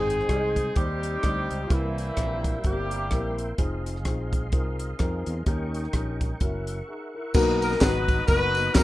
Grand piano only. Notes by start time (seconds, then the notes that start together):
Already playing: G#2 G#3 C4 D#4 G5
0.29 G#3 C4 D#4 G#4
0.75 D#3 C4 D#4 G4
1.23 G3 C4 D#4 G4
1.70 C3 A#3 C4 E4 G4
2.17 A#3 C4 E4 A#4
2.64 A#3 C4 E4 A#4
3.11 A#3 C4 E4 A#4
3.58 C4 D#4 F4 G#4
4.06 C4 D#4 F4 G#4
4.52 C4 D#4 F4 A#4
4.99 C4 D#4 F4 A#4
5.47 D#3 C#4 D#4 G4 A#4
5.94 C#4 D#4 G4 A#4
6.41 C#4 E4 F#4 A#4
6.88 D#4 G#4
7.15 E4 A#4
7.34 B2 A#3 B3 D#4 F#4 A#4
7.80 F#3 B3 D#4 F#4 A#5
8.28 A#3 B3 D#4 F#4 A#4
8.56 A#3 B3 D#4 F#4 A#4
8.75 A#3 B3 D#4 F#4 A#4